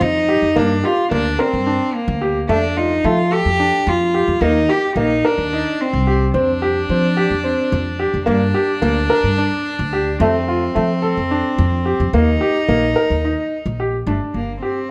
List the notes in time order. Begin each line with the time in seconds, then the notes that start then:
0.01 F2 D#4
0.29 G4
0.42 F2
0.56 G2 A#3 D4
0.84 F4 G4
1.11 D2 A#3 D4
1.39 C4 A#4
1.53 G2
1.66 D4
1.95 A#3
2.08 D2
2.21 G4
2.49 F2 A3 D4
2.77 D#4 F4
3.04 F3 A3 F4
3.31 G4 A4
3.45 F2
3.60 D4
3.87 F2 F4
4.14 G4
4.28 F2
4.41 D#2 A#3 D#4
4.69 G4
4.96 A#1 A#3 D#4
5.25 D4 A#4
5.38 D#2
5.53 D#4
5.81 C4
5.93 C2
6.07 G4
6.34 F2 C4 D4
6.62 G4
6.89 F3 C4
7.17 G4
7.30 F2
7.44 C4
7.72 F2
7.99 G4
8.14 F2
8.26 G2 A#3 D4
8.54 G4
8.82 D2 A#3
9.10 A#4
9.23 G2
9.38 D4
9.79 D2
9.93 G4
10.19 F2 A3 C4
10.48 F4
10.75 F3 A3
11.02 A4
11.17 F2
11.31 D4
11.58 F2
11.86 G4
12.00 F2
12.13 D#2 A#3 D#4
12.41 G4
12.68 A#1 A#3
12.96 A#4
13.10 D#2
13.25 D#4
13.66 A#1
13.80 G4
14.07 G1 A3 D4
14.34 G1 A#3
14.61 C4 G4